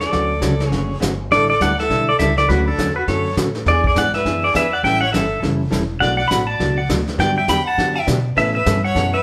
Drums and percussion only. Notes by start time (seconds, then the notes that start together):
0.01 snare
0.13 brush sweep, kick, snare
0.42 kick, snare, hi-hat pedal
0.60 snare
0.72 brush sweep, kick, snare
1.02 kick, snare, hi-hat pedal
1.31 brush sweep, kick, snare
1.61 kick, snare, hi-hat pedal
1.79 snare
1.90 brush sweep, kick, snare
2.19 kick, snare, hi-hat pedal
2.37 snare
2.49 brush sweep, kick, snare
2.78 kick, snare, hi-hat pedal
3.08 brush sweep, kick, snare
3.37 kick, snare, hi-hat pedal
3.55 snare
3.66 brush sweep, kick, snare
3.84 kick
3.96 kick, snare, hi-hat pedal
4.14 snare
4.25 brush sweep, kick, snare
4.55 kick, snare, hi-hat pedal
4.84 brush sweep, kick, snare
5.13 kick, snare, hi-hat pedal
5.43 brush sweep, kick, snare
5.72 kick, snare, hi-hat pedal
6.01 brush sweep, kick, snare
6.31 kick, snare, hi-hat pedal
6.60 brush sweep, kick, snare
6.89 kick, snare, hi-hat pedal
7.08 snare
7.19 brush sweep, kick, snare
7.48 kick, snare, hi-hat pedal
7.78 brush sweep, kick, snare
8.07 kick, snare, hi-hat pedal
8.37 brush sweep, kick, snare
8.66 kick, snare, hi-hat pedal
8.96 brush sweep, kick, snare